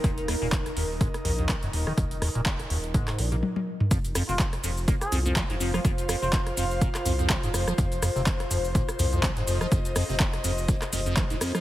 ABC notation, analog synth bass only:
X:1
M:4/4
L:1/16
Q:"Swing 16ths" 1/4=124
K:Ebdor
V:1 name="Analog synth bass" clef=bass
E,,,2 z E,,,2 z E,,,2 z2 B,,,2 z E,,,2 z | E,,,2 z E,,,2 z E,,,2 z2 B,,,2 z4 | F,,,2 z F,,,2 z F,,,2 z2 C,,2 z F,,,2 z | F,,,2 z F,,,2 z F,,,2 z2 C,,2 z F,,,2 z |
F,,,2 z F,,,2 z F,,,2 z2 C,,2 z F,,,2 z | F,,,2 z F,,,2 z F,,,2 z2 F,,,2 z E,,, z2 |]